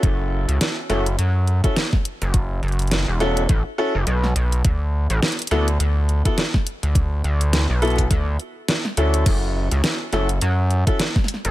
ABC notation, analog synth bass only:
X:1
M:4/4
L:1/16
Q:"Swing 16ths" 1/4=104
K:F#m
V:1 name="Analog synth bass" clef=bass
F,,,3 C,, z2 F,,,2 F,,3 z4 F,,,- | F,,,2 F,,,3 E,,,3 A,,, z2 F,,, B,,,2 B,,,2 | D,,3 A,,, z2 D,,2 D,,3 z4 D,,- | D,,2 D,,3 B,,,3 D,,2 z4 D,,2 |
F,,,3 C,, z2 F,,,2 F,,3 z4 F,,, |]